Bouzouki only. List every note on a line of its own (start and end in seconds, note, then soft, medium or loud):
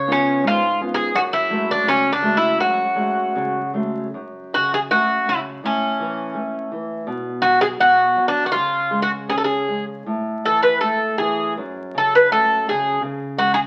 0.00 0.11 C#5 medium
0.12 0.44 C#4 medium
0.47 0.80 F4 medium
0.94 1.18 G#4 medium
1.16 1.21 F#4 medium
1.33 1.70 E4 medium
1.71 1.87 D4 medium
1.88 2.10 C#4 medium
2.12 2.37 D4 medium
2.37 2.60 E4 medium
2.60 3.71 F#4 medium
4.54 4.72 F#4 medium
4.74 4.79 G#4 medium
4.91 5.28 F#4 medium
5.29 5.38 E4 medium
5.66 6.69 C#4 medium
7.42 7.59 F#4 medium
7.61 7.66 G#4 loud
7.80 8.28 F#4 medium
8.28 8.46 D4 medium
8.46 8.51 F#4 medium
8.52 8.99 F4 medium
9.02 9.09 F#4 medium
9.30 9.36 G#4 medium
9.38 9.44 A4 medium
9.44 9.84 G#4 medium
10.45 10.62 A4 medium
10.63 10.80 B4 medium
10.81 11.16 A4 medium
11.18 11.53 G#4 medium
11.98 12.14 A4 medium
12.15 12.32 B4 medium
12.32 12.69 A4 medium
12.69 13.01 G#4 medium
13.39 13.54 F#4 medium
13.54 13.59 G#4 medium